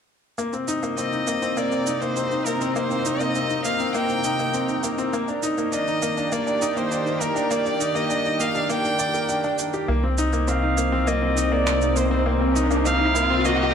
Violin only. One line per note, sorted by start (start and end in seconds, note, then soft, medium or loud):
0.98 1.59 D#5 medium
1.57 2.03 D5 medium
2.01 2.47 C5 medium
2.46 2.75 A#4 medium
2.76 3.22 C5 medium
3.21 3.64 D#5 medium
3.65 3.92 F5 medium
3.94 4.80 G5 medium
5.73 6.33 D#5 medium
6.32 6.78 D5 medium
6.77 7.23 C5 medium
7.21 7.53 A#4 medium
7.51 7.97 D5 medium
7.96 8.42 D#5 medium
8.40 8.72 F5 medium
8.70 9.59 G5 loud
10.48 11.09 F5 loud
11.08 11.54 D#5 medium
11.52 11.98 D5 medium
11.97 12.26 C5 medium
12.86 13.47 F5 loud
13.45 13.74 D#5 loud